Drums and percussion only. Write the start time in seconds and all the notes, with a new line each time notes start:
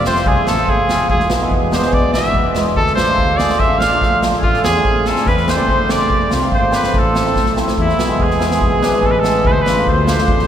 0.05 snare
0.15 snare
0.26 kick
0.47 snare
0.68 kick
0.89 snare
1.10 kick
1.20 snare
1.30 snare
1.51 kick
1.72 snare
1.82 snare
1.93 kick
2.14 snare
2.24 snare
2.34 kick
2.55 snare
2.65 snare
2.76 kick
2.87 snare
2.97 snare
3.18 kick
3.39 snare
3.49 snare
3.60 kick
3.81 snare
3.92 snare
4.01 kick, snare
4.22 snare
4.33 snare
4.43 kick
4.54 snare
4.64 snare
4.74 snare
4.85 kick
5.05 snare
5.16 snare
5.26 kick, snare
5.37 snare
5.48 snare
5.58 snare
5.68 kick
5.89 snare
5.99 snare
6.10 kick
6.31 snare
6.42 snare
6.52 kick
6.72 snare
6.83 snare
6.94 kick
7.15 snare
7.26 snare
7.36 kick, snare
7.46 snare
7.57 snare
7.68 snare
7.78 kick
7.89 snare
7.99 snare
8.20 kick
8.30 snare
8.41 snare
8.51 snare
8.61 kick
8.83 snare
8.93 snare
9.03 kick
9.24 snare
9.45 kick
9.66 snare
9.77 snare
9.87 kick
10.07 snare
10.18 snare
10.28 kick
10.39 snare